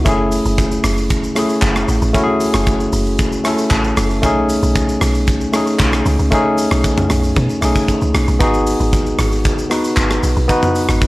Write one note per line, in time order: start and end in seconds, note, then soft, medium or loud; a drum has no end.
0.05 0.40 F#1 loud
0.05 0.89 A3 loud
0.05 0.90 C#4 loud
0.05 0.90 E4 loud
0.05 0.91 G#4 loud
0.05 kick loud
0.05 hi-hat pedal medium
0.05 shaker medium
0.32 open hi-hat medium
0.32 shaker loud
0.45 0.78 F#1 loud
0.45 shaker medium
0.58 kick loud
0.58 hi-hat pedal medium
0.58 shaker medium
0.71 shaker medium
0.84 1.28 F#1 medium
0.84 cross-stick medium
0.84 open hi-hat medium
0.84 shaker medium
0.97 shaker medium
1.10 kick loud
1.10 hi-hat pedal medium
1.10 shaker medium
1.24 shaker medium
1.35 1.99 A3 medium
1.35 1.99 C#4 medium
1.35 2.00 E4 medium
1.35 2.01 G#4 medium
1.35 cross-stick medium
1.35 open hi-hat medium
1.35 shaker medium
1.49 shaker medium
1.62 1.85 F#1 medium
1.62 kick medium
1.62 clap medium
1.62 hi-hat pedal medium
1.62 shaker medium
1.76 cross-stick medium
1.76 shaker soft
1.88 2.00 A1 loud
1.88 open hi-hat soft
1.88 shaker medium
2.02 2.13 A1 loud
2.02 shaker medium
2.13 2.98 A3 loud
2.13 2.98 C#4 loud
2.13 2.99 E4 loud
2.13 2.22 F#4 loud
2.13 kick loud
2.13 hi-hat pedal medium
2.13 shaker medium
2.23 3.03 G#4 loud
2.40 open hi-hat medium
2.40 shaker loud
2.54 2.87 F#1 loud
2.54 cross-stick medium
2.54 shaker medium
2.67 kick loud
2.67 hi-hat pedal medium
2.67 shaker medium
2.80 shaker medium
2.93 3.37 F#1 loud
2.93 open hi-hat medium
2.93 shaker loud
3.06 shaker medium
3.19 kick loud
3.19 hi-hat pedal medium
3.19 shaker medium
3.32 shaker medium
3.44 4.07 A3 medium
3.44 4.08 C#4 medium
3.44 4.09 E4 medium
3.44 4.09 A4 loud
3.44 3.70 E5 medium
3.44 cross-stick medium
3.44 open hi-hat medium
3.44 shaker medium
3.58 shaker medium
3.71 3.93 A1 medium
3.71 4.20 A5 medium
3.71 kick medium
3.71 clap medium
3.71 hi-hat pedal medium
3.71 shaker medium
3.84 shaker soft
3.97 4.25 F#1 medium
3.97 cross-stick loud
3.97 open hi-hat soft
3.97 shaker medium
4.10 shaker soft
4.22 4.57 B1 loud
4.22 5.06 A3 loud
4.22 5.07 C#4 loud
4.22 5.07 D#4 loud
4.22 5.08 G#4 loud
4.22 kick loud
4.22 hi-hat pedal medium
4.22 shaker medium
4.49 open hi-hat medium
4.49 shaker loud
4.63 4.96 B1 loud
4.63 shaker medium
4.75 kick loud
4.75 hi-hat pedal medium
4.75 shaker medium
4.89 shaker medium
5.01 5.46 B1 loud
5.01 cross-stick medium
5.01 open hi-hat medium
5.01 shaker loud
5.15 shaker medium
5.27 kick loud
5.27 hi-hat pedal medium
5.27 shaker medium
5.41 shaker medium
5.52 6.16 A3 medium
5.52 6.17 C#4 medium
5.52 6.17 D#4 medium
5.52 6.18 G#4 loud
5.52 cross-stick medium
5.52 open hi-hat medium
5.52 shaker loud
5.67 shaker medium
5.79 6.02 B1 medium
5.79 kick medium
5.79 clap medium
5.79 hi-hat pedal medium
5.79 shaker medium
5.93 cross-stick medium
5.93 shaker soft
6.06 6.17 C#2 loud
6.06 open hi-hat soft
6.06 shaker medium
6.19 6.30 C#2 loud
6.19 shaker medium
6.31 7.15 A3 loud
6.31 7.16 C#4 loud
6.31 7.16 D#4 loud
6.31 7.17 G#4 loud
6.31 kick loud
6.31 hi-hat pedal medium
6.31 shaker medium
6.58 open hi-hat medium
6.58 shaker loud
6.71 7.04 B1 medium
6.71 cross-stick medium
6.71 shaker medium
6.84 kick loud
6.84 hi-hat pedal medium
6.84 shaker medium
6.98 mid tom medium
6.98 shaker medium
7.10 7.32 B1 loud
7.10 cross-stick medium
7.10 open hi-hat medium
7.10 shaker medium
7.24 shaker medium
7.36 7.48 B2 loud
7.36 kick loud
7.36 hi-hat pedal medium
7.36 shaker medium
7.50 shaker medium
7.61 7.74 B1 medium
7.61 8.25 A3 medium
7.61 8.25 C#4 medium
7.61 8.26 D#4 medium
7.61 8.27 G#4 loud
7.61 cross-stick medium
7.61 open hi-hat medium
7.61 shaker medium
7.76 kick loud
7.76 shaker medium
7.88 kick medium
7.88 hi-hat pedal medium
7.88 shaker medium
8.02 8.13 C#2 medium
8.02 shaker soft
8.14 8.26 B1 loud
8.14 cross-stick loud
8.14 open hi-hat soft
8.14 shaker medium
8.28 8.39 B1 loud
8.28 shaker medium
8.39 8.74 G#1 loud
8.39 9.24 B3 loud
8.39 9.24 D#4 loud
8.39 9.25 F#4 loud
8.39 9.26 G#4 loud
8.39 kick loud
8.39 hi-hat pedal medium
8.39 shaker medium
8.54 shaker medium
8.67 open hi-hat medium
8.67 shaker loud
8.80 9.13 G#1 loud
8.80 shaker medium
8.93 kick loud
8.93 hi-hat pedal medium
8.93 shaker medium
9.06 shaker medium
9.19 9.63 G#1 loud
9.19 cross-stick medium
9.19 open hi-hat medium
9.19 shaker medium
9.32 shaker medium
9.45 kick loud
9.45 hi-hat pedal medium
9.45 shaker medium
9.58 shaker medium
9.70 10.33 B3 medium
9.70 10.34 D#4 medium
9.70 10.35 F#4 medium
9.70 10.35 B4 loud
9.70 cross-stick medium
9.70 open hi-hat medium
9.70 shaker medium
9.84 shaker medium
9.97 10.19 G#1 medium
9.97 kick medium
9.97 clap medium
9.97 hi-hat pedal medium
9.97 shaker medium
10.10 cross-stick medium
10.10 shaker soft
10.23 10.35 B1 medium
10.23 open hi-hat soft
10.23 shaker medium
10.37 10.47 B1 loud
10.37 shaker medium
10.48 11.07 B3 loud
10.48 11.07 D#4 loud
10.48 11.07 F#4 loud
10.48 11.07 B4 loud
10.48 kick loud
10.48 hi-hat pedal medium
10.48 shaker medium
10.63 mid tom medium
10.63 shaker medium
10.75 open hi-hat medium
10.75 shaker loud
10.89 11.07 G#1 medium
10.89 cross-stick medium
10.89 shaker medium
11.01 kick loud
11.01 hi-hat pedal medium
11.01 shaker medium